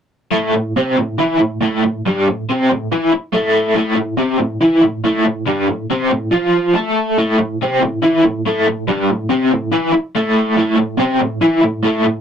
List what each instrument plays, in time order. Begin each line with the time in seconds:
0.31 overdriven electric guitar A2 A3
0.54 overdriven electric guitar A2
0.76 overdriven electric guitar C3 C4
0.98 overdriven electric guitar A2
1.18 overdriven electric guitar E3 E4
1.40 overdriven electric guitar A2
1.61 overdriven electric guitar A2 A3
1.84 overdriven electric guitar A2
2.06 overdriven electric guitar G2 G3
2.28 overdriven electric guitar A2
2.49 overdriven electric guitar C3 C4
2.71 overdriven electric guitar A2
2.92 overdriven electric guitar E3 E4
3.13 muted overdriven electric guitar stroke
3.33 overdriven electric guitar A2 A3
3.75 overdriven electric guitar A2 A3
3.96 overdriven electric guitar A2
4.17 overdriven electric guitar C3 C4
4.39 overdriven electric guitar A2
4.61 overdriven electric guitar E3 E4
4.83 overdriven electric guitar A2
5.04 overdriven electric guitar A2 A3
5.26 overdriven electric guitar A2
5.46 overdriven electric guitar G2 G3
5.68 overdriven electric guitar A2
5.90 overdriven electric guitar C3 C4
6.11 overdriven electric guitar A2
6.31 overdriven electric guitar F3 F4
6.74 overdriven electric guitar A3 A4
7.18 overdriven electric guitar A2 A3
7.39 overdriven electric guitar A2
7.62 overdriven electric guitar C3 C4
7.81 overdriven electric guitar A2
8.02 overdriven electric guitar E3 E4
8.24 overdriven electric guitar A2
8.46 overdriven electric guitar A2 A3
8.68 overdriven electric guitar A2
8.88 overdriven electric guitar G2 G3
9.10 overdriven electric guitar A2
9.29 overdriven electric guitar C3 C4
9.53 overdriven electric guitar A2
9.72 overdriven electric guitar E3 E4
9.94 muted overdriven electric guitar stroke
10.15 overdriven electric guitar A2 A3
10.57 overdriven electric guitar A2 A3
10.78 overdriven electric guitar A2
10.98 overdriven electric guitar C3 C4
11.20 overdriven electric guitar A2
11.41 overdriven electric guitar E3 E4
11.63 overdriven electric guitar A2
11.83 overdriven electric guitar A2 A3
12.05 overdriven electric guitar A2